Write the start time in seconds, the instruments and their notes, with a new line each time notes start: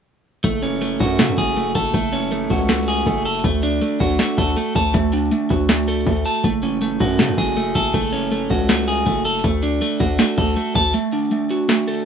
0.44 808-style bass F#1, clean electric guitar A3, kick, closed hi-hat
0.62 clean electric guitar C#4, closed hi-hat
0.81 clean electric guitar A3, closed hi-hat
1.00 808-style bass F#2, clean electric guitar F#4, kick, closed hi-hat
1.19 808-style bass C#3, clean electric guitar A3, snare, closed hi-hat
1.28 808-style bass F#2
1.38 808-style bass F#1, clean electric guitar G#4, kick, closed hi-hat
1.57 clean electric guitar A3, closed hi-hat
1.75 808-style bass F#1, clean electric guitar A4, kick, closed hi-hat
1.94 808-style bass F#1, clean electric guitar A3, kick, closed hi-hat
2.12 clean electric guitar C#4, open hi-hat
2.31 clean electric guitar A3, closed hi-hat
2.50 808-style bass C#2, clean electric guitar F#4, kick, closed hi-hat
2.69 clean electric guitar A3, snare, closed hi-hat
2.74 closed hi-hat
2.78 closed hi-hat
2.83 closed hi-hat
2.88 clean electric guitar G#4, closed hi-hat
3.06 808-style bass F#1, clean electric guitar A3, kick, closed hi-hat
3.25 clean electric guitar A4, closed hi-hat
3.30 closed hi-hat
3.35 closed hi-hat
3.39 closed hi-hat
3.44 808-style bass D2, clean electric guitar A3, kick, closed hi-hat
3.62 clean electric guitar D4, closed hi-hat
3.81 clean electric guitar A3, closed hi-hat
4.00 808-style bass D2, clean electric guitar F#4, kick, closed hi-hat
4.19 clean electric guitar A3, snare, closed hi-hat
4.38 808-style bass D2, clean electric guitar A4, kick, closed hi-hat
4.57 clean electric guitar A3, closed hi-hat
4.75 808-style bass D2, clean electric guitar A5, kick, closed hi-hat
4.94 808-style bass D2, clean electric guitar A3, kick, closed hi-hat
5.12 clean electric guitar D4, closed hi-hat, open hi-hat
5.19 closed hi-hat
5.25 closed hi-hat
5.31 clean electric guitar A3, closed hi-hat
5.50 808-style bass D2, clean electric guitar F#4, kick, closed hi-hat
5.69 clean electric guitar A3, snare, closed hi-hat
5.74 closed hi-hat
5.78 closed hi-hat
5.83 closed hi-hat
5.88 clean electric guitar A4, closed hi-hat
5.94 closed hi-hat
6.00 closed hi-hat
6.06 808-style bass D2, clean electric guitar A3, kick, closed hi-hat
6.16 closed hi-hat
6.25 clean electric guitar A5, closed hi-hat
6.35 closed hi-hat
6.44 808-style bass F#1, clean electric guitar A3, kick, closed hi-hat
6.62 clean electric guitar C#4, closed hi-hat
6.82 clean electric guitar A3, closed hi-hat
7.00 808-style bass F#2, clean electric guitar F#4, kick, closed hi-hat
7.19 808-style bass C#3, clean electric guitar A3, snare, closed hi-hat
7.28 808-style bass F#2
7.38 808-style bass F#1, clean electric guitar G#4, kick, closed hi-hat
7.57 clean electric guitar A3, closed hi-hat
7.75 808-style bass F#1, clean electric guitar A4, kick, closed hi-hat
7.94 808-style bass F#1, clean electric guitar A3, kick, closed hi-hat
8.12 clean electric guitar C#4, open hi-hat
8.32 clean electric guitar A3, closed hi-hat
8.50 808-style bass C#2, clean electric guitar F#4, kick, closed hi-hat
8.69 clean electric guitar A3, snare, closed hi-hat
8.74 closed hi-hat
8.78 closed hi-hat
8.83 closed hi-hat
8.88 clean electric guitar G#4, closed hi-hat
9.06 808-style bass F#1, clean electric guitar A3, kick, closed hi-hat
9.25 clean electric guitar A4, closed hi-hat
9.30 closed hi-hat
9.35 closed hi-hat
9.39 closed hi-hat
9.44 808-style bass D2, clean electric guitar A3, kick, closed hi-hat
9.62 clean electric guitar D4, closed hi-hat
9.81 clean electric guitar A3, closed hi-hat
10.00 808-style bass D2, clean electric guitar F#4, kick, closed hi-hat
10.19 clean electric guitar A3, snare, closed hi-hat
10.38 808-style bass D2, clean electric guitar A4, kick, closed hi-hat
10.57 clean electric guitar A3, closed hi-hat
10.75 808-style bass D2, clean electric guitar A5, kick, closed hi-hat
10.94 clean electric guitar A3, closed hi-hat
11.12 clean electric guitar D4, closed hi-hat, open hi-hat
11.19 closed hi-hat
11.25 closed hi-hat
11.31 clean electric guitar A3, closed hi-hat
11.49 clean electric guitar F#4, closed hi-hat
11.69 clean electric guitar A3, snare, closed hi-hat
11.74 closed hi-hat
11.78 closed hi-hat
11.83 closed hi-hat
11.88 clean electric guitar A4, closed hi-hat
11.94 closed hi-hat
12.00 closed hi-hat